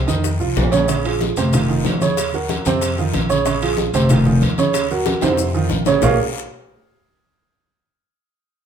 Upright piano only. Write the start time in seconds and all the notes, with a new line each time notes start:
0.07 D#3 D#4 D#5
0.40 F3 F4 F5
0.71 C#3 C#4 C#5
0.88 C#3 C#4 C#5
1.05 F3 F4 G#4
1.37 C3 C4 C5
1.54 D#3 D#4 F4
1.69 D#3 D#4 F4
2.02 C#3 C#4 C#5
2.34 F#3 F#4 A#4
2.66 C3 C4 C5
2.99 D#3 D#4 F4
3.29 C#3 C#4 C#5
3.46 C#3 C#4 C#5
3.62 F3 F4 G#4
3.95 C3 C4 C5
4.10 D#3 D#4 F4
4.26 D#3 D#4 F4
4.58 C#3 C#4 C#5
4.91 F#3 F#4 A#4
5.22 C3 C4 C5
5.54 D#3 D#4 F4
5.86 C#3 C#4 C#5
6.03 A#3 F4 G#4 A#4 C#5 F5